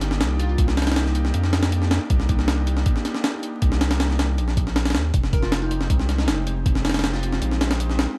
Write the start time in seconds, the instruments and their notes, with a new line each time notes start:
Already playing: sub bass G1
0.01 snare, closed hi-hat
0.11 snare
0.20 sub bass C2, snare, closed hi-hat
0.39 synth pluck F4, closed hi-hat
0.49 synth pluck F4
0.58 sub bass C2, analog synth pad A#3 D4 D#4 G4, kick, closed hi-hat
0.68 snare
0.77 synth pluck D#4, snare, closed hi-hat
0.82 snare, closed hi-hat
0.87 synth pluck D#4, snare, closed hi-hat
0.92 snare, closed hi-hat
0.96 synth pluck D#4, snare, closed hi-hat
1.06 snare
1.15 closed hi-hat
1.25 snare
1.34 sub bass F2, closed hi-hat
1.44 snare
1.53 snare, closed hi-hat
1.63 snare, closed hi-hat
1.72 closed hi-hat
1.82 snare
1.91 snare, closed hi-hat
2.10 sub bass C2, analog synth pad A#3 D4 D#4 G4, kick, closed hi-hat
2.20 snare
2.29 kick, closed hi-hat
2.39 snare
2.48 snare, closed hi-hat
2.67 closed hi-hat
2.77 snare
2.86 kick, closed hi-hat
2.96 snare
3.05 snare, closed hi-hat
3.15 snare
3.24 snare, closed hi-hat
3.43 closed hi-hat
3.62 sub bass C2, analog synth pad A#3 D4 D#4 G4, kick, closed hi-hat
3.72 snare
3.81 snare, closed hi-hat
3.91 snare, closed hi-hat
4.00 snare, closed hi-hat
4.10 snare
4.19 snare, closed hi-hat
4.38 sub bass A#1, closed hi-hat
4.48 snare
4.57 kick, closed hi-hat
4.67 snare
4.76 snare, closed hi-hat
4.85 snare, closed hi-hat
4.90 snare, closed hi-hat
4.95 sub bass D#2, snare, closed hi-hat
5.14 sub bass F1, analog synth pad G#3 C4 D#4 G4, kick, closed hi-hat
5.24 snare
5.33 synth pluck A#4, kick, closed hi-hat
5.42 synth pluck F4, snare
5.52 snare, closed hi-hat
5.62 synth pluck D#4
5.71 synth pluck D#4, closed hi-hat
5.81 snare
5.90 sub bass C2, kick, closed hi-hat
5.99 snare
6.09 snare, closed hi-hat
6.18 synth pluck D#4, snare
6.28 sub bass F1, snare, closed hi-hat
6.47 closed hi-hat
6.66 sub bass F1, analog synth pad G#3 C4 D#4 G4, kick, closed hi-hat
6.75 snare
6.85 synth pluck D#4, snare, closed hi-hat
6.90 snare, closed hi-hat
6.94 synth pluck D#4, snare, closed hi-hat
6.99 snare, closed hi-hat
7.04 snare, closed hi-hat
7.13 synth pluck F4, snare
7.23 closed hi-hat
7.32 snare
7.42 sub bass A#1, closed hi-hat
7.51 snare
7.61 snare, closed hi-hat
7.71 snare, closed hi-hat
7.80 closed hi-hat
7.90 snare
7.99 snare, closed hi-hat